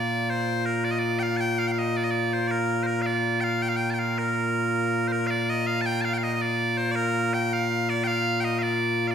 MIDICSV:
0, 0, Header, 1, 2, 480
1, 0, Start_track
1, 0, Key_signature, -2, "major"
1, 0, Tempo, 370370
1, 1093, Time_signature, 6, 3, 24, 8
1, 11856, End_track
2, 0, Start_track
2, 0, Title_t, "Bagpipes"
2, 0, Program_c, 0, 109
2, 0, Note_on_c, 0, 46, 89
2, 0, Note_on_c, 0, 58, 89
2, 0, Note_on_c, 0, 65, 89
2, 0, Note_on_c, 0, 74, 105
2, 389, Note_off_c, 0, 74, 0
2, 389, Note_on_c, 0, 72, 101
2, 853, Note_off_c, 0, 72, 0
2, 853, Note_on_c, 0, 70, 80
2, 1096, Note_off_c, 0, 70, 0
2, 1096, Note_on_c, 0, 74, 102
2, 1179, Note_off_c, 0, 74, 0
2, 1179, Note_on_c, 0, 75, 84
2, 1280, Note_off_c, 0, 75, 0
2, 1280, Note_on_c, 0, 74, 96
2, 1544, Note_off_c, 0, 74, 0
2, 1544, Note_on_c, 0, 79, 94
2, 1595, Note_off_c, 0, 79, 0
2, 1595, Note_on_c, 0, 77, 94
2, 1776, Note_off_c, 0, 77, 0
2, 1776, Note_on_c, 0, 81, 106
2, 1819, Note_off_c, 0, 81, 0
2, 1819, Note_on_c, 0, 79, 106
2, 2059, Note_off_c, 0, 79, 0
2, 2059, Note_on_c, 0, 77, 94
2, 2174, Note_off_c, 0, 77, 0
2, 2174, Note_on_c, 0, 79, 67
2, 2227, Note_off_c, 0, 79, 0
2, 2227, Note_on_c, 0, 77, 67
2, 2312, Note_off_c, 0, 77, 0
2, 2312, Note_on_c, 0, 75, 88
2, 2549, Note_off_c, 0, 75, 0
2, 2549, Note_on_c, 0, 74, 101
2, 2642, Note_off_c, 0, 74, 0
2, 2642, Note_on_c, 0, 75, 82
2, 2730, Note_off_c, 0, 75, 0
2, 2730, Note_on_c, 0, 74, 95
2, 3025, Note_off_c, 0, 74, 0
2, 3025, Note_on_c, 0, 72, 83
2, 3208, Note_off_c, 0, 72, 0
2, 3208, Note_on_c, 0, 74, 94
2, 3255, Note_off_c, 0, 74, 0
2, 3255, Note_on_c, 0, 70, 94
2, 3671, Note_off_c, 0, 70, 0
2, 3671, Note_on_c, 0, 72, 82
2, 3714, Note_off_c, 0, 72, 0
2, 3714, Note_on_c, 0, 70, 82
2, 3912, Note_off_c, 0, 70, 0
2, 3912, Note_on_c, 0, 77, 92
2, 3966, Note_off_c, 0, 77, 0
2, 3966, Note_on_c, 0, 74, 92
2, 4414, Note_off_c, 0, 74, 0
2, 4414, Note_on_c, 0, 79, 93
2, 4457, Note_off_c, 0, 79, 0
2, 4457, Note_on_c, 0, 77, 93
2, 4698, Note_off_c, 0, 77, 0
2, 4698, Note_on_c, 0, 79, 100
2, 4781, Note_off_c, 0, 79, 0
2, 4781, Note_on_c, 0, 77, 84
2, 4881, Note_off_c, 0, 77, 0
2, 4881, Note_on_c, 0, 79, 94
2, 5059, Note_off_c, 0, 79, 0
2, 5059, Note_on_c, 0, 81, 69
2, 5107, Note_off_c, 0, 81, 0
2, 5107, Note_on_c, 0, 79, 69
2, 5173, Note_off_c, 0, 79, 0
2, 5173, Note_on_c, 0, 77, 81
2, 5423, Note_off_c, 0, 77, 0
2, 5423, Note_on_c, 0, 70, 83
2, 6581, Note_off_c, 0, 70, 0
2, 6581, Note_on_c, 0, 72, 90
2, 6640, Note_off_c, 0, 72, 0
2, 6640, Note_on_c, 0, 70, 90
2, 6829, Note_off_c, 0, 70, 0
2, 6829, Note_on_c, 0, 77, 105
2, 6872, Note_off_c, 0, 77, 0
2, 6872, Note_on_c, 0, 74, 105
2, 7123, Note_off_c, 0, 74, 0
2, 7123, Note_on_c, 0, 75, 100
2, 7342, Note_off_c, 0, 75, 0
2, 7342, Note_on_c, 0, 77, 106
2, 7535, Note_off_c, 0, 77, 0
2, 7535, Note_on_c, 0, 81, 121
2, 7593, Note_off_c, 0, 81, 0
2, 7593, Note_on_c, 0, 79, 121
2, 7793, Note_off_c, 0, 79, 0
2, 7793, Note_on_c, 0, 81, 98
2, 7838, Note_off_c, 0, 81, 0
2, 7838, Note_on_c, 0, 77, 98
2, 7954, Note_off_c, 0, 77, 0
2, 7954, Note_on_c, 0, 79, 77
2, 8012, Note_off_c, 0, 79, 0
2, 8012, Note_on_c, 0, 77, 77
2, 8078, Note_off_c, 0, 77, 0
2, 8078, Note_on_c, 0, 75, 98
2, 8210, Note_off_c, 0, 75, 0
2, 8210, Note_on_c, 0, 75, 86
2, 8312, Note_off_c, 0, 75, 0
2, 8312, Note_on_c, 0, 74, 97
2, 8779, Note_off_c, 0, 74, 0
2, 8779, Note_on_c, 0, 72, 101
2, 8962, Note_off_c, 0, 72, 0
2, 8962, Note_on_c, 0, 74, 106
2, 9016, Note_off_c, 0, 74, 0
2, 9016, Note_on_c, 0, 70, 106
2, 9510, Note_off_c, 0, 70, 0
2, 9510, Note_on_c, 0, 79, 101
2, 9764, Note_off_c, 0, 79, 0
2, 9764, Note_on_c, 0, 77, 108
2, 10231, Note_off_c, 0, 77, 0
2, 10231, Note_on_c, 0, 74, 96
2, 10418, Note_off_c, 0, 74, 0
2, 10418, Note_on_c, 0, 79, 114
2, 10464, Note_off_c, 0, 79, 0
2, 10464, Note_on_c, 0, 77, 114
2, 10894, Note_off_c, 0, 77, 0
2, 10894, Note_on_c, 0, 79, 93
2, 10944, Note_off_c, 0, 79, 0
2, 10944, Note_on_c, 0, 75, 93
2, 11126, Note_off_c, 0, 75, 0
2, 11126, Note_on_c, 0, 77, 99
2, 11178, Note_off_c, 0, 77, 0
2, 11178, Note_on_c, 0, 74, 99
2, 11759, Note_off_c, 0, 74, 0
2, 11759, Note_on_c, 0, 77, 75
2, 11802, Note_off_c, 0, 77, 0
2, 11803, Note_on_c, 0, 74, 75
2, 11856, Note_off_c, 0, 46, 0
2, 11856, Note_off_c, 0, 58, 0
2, 11856, Note_off_c, 0, 65, 0
2, 11856, Note_off_c, 0, 74, 0
2, 11856, End_track
0, 0, End_of_file